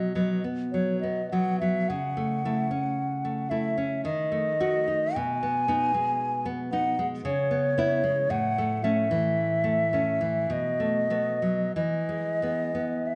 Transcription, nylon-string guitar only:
Already playing: B2 F#3 B3
0.15 F#3 B3
0.44 B3
0.74 F#3
1.03 B3
1.32 F#3 B3
1.62 F#3
1.90 C#3
2.17 A3
2.45 A3 E4
2.71 C#4
3.25 A3
3.51 A3 E4
3.78 C#4
4.05 D#3
4.32 A3
4.60 A3 F#4
4.88 D#4
5.16 B2
5.43 B3
5.68 B3 D#4
5.94 G#3
6.46 B3
6.72 B3 D#4
6.99 G#3
7.25 C#3
7.51 B3
7.78 B3 E4
8.04 G#3
8.30 A2
8.58 A3
8.84 A3 C#4
9.11 E3
9.64 A3
9.93 A3 C#4
10.21 E3
10.50 B2
10.80 A3
11.10 A3 B3
11.42 F#3
11.76 E3
12.09 G#3
12.42 G#3 B3
12.75 B3

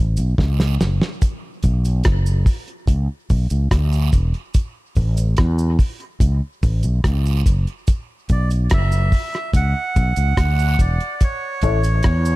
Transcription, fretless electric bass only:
Already playing: A1
0.18 B1
0.39 C#2
0.81 F#1
1.64 B1
2.06 F#1
2.87 C#2
3.30 B1
3.51 C#2
3.71 D2
4.13 E1
4.97 A1
5.39 E2
6.20 C#2
6.63 A1
6.84 B1
7.04 C#2
7.46 F#1
8.30 B1
8.72 F#1
9.54 C#2
9.97 B1
10.17 C#2
10.37 D2
10.79 E1
11.63 A1
12.05 E2

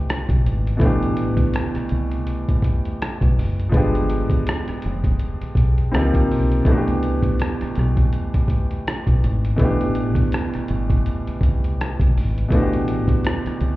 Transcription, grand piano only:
Already playing: B2 E3 A3 D4 G4
0.77 B2 E3
0.81 A3 D4
0.86 G4
3.69 F3 G#3 B3
3.75 D4 G4
5.92 E3 A#3 C4 D#4
5.96 F3 G4
6.63 B2 E3
6.67 A3 D4 F#4
6.78 G4
9.56 B2 E3 A3
9.62 D4 G4
12.48 B2 E3 A3
12.55 D4 F#4
12.63 G4

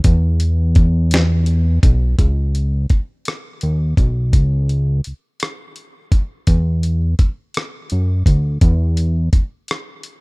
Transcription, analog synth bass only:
0.05 E2
1.84 B1
2.19 C#2
2.91 D#2
3.63 D#2
3.98 B1
4.34 C#2
5.07 C#2
6.48 E2
7.20 F#2
7.92 F#2
8.27 D2
8.62 E2
9.34 E2

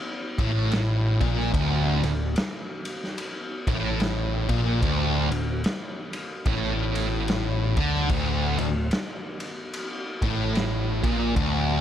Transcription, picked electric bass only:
0.38 A1
1.21 A#1
1.54 D1
2.03 D1
3.67 A1
4.49 A#1
4.82 D1
5.31 D1
6.46 A1
7.77 D2
8.09 D1
8.58 D1
10.22 A1
11.03 A#1
11.36 D1

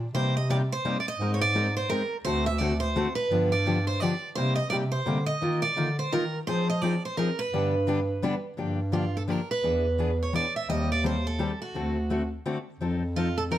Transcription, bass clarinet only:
0.13 C3
1.19 G#2
2.24 D2
3.30 G2
4.35 C3
4.70 C3
5.05 D3
5.41 D#3
5.75 D3
6.11 D#3
6.46 F3
7.51 G2
8.57 G2
9.62 E2
10.67 D#2
11.74 D2
12.79 F2

